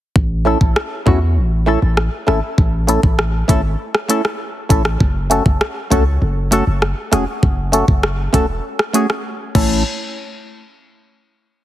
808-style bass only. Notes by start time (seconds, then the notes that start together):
0.16 A1
0.61 A1
1.07 E2
1.37 A1
1.82 A1
2.28 G#1
2.58 A1
3.03 A1
3.49 G#1
4.70 A1
5.00 F#1
5.46 F#1
5.91 C#2
6.22 F#1
6.67 F#1
7.12 E1
7.43 F#1
7.88 F#1
8.34 E1
9.55 A1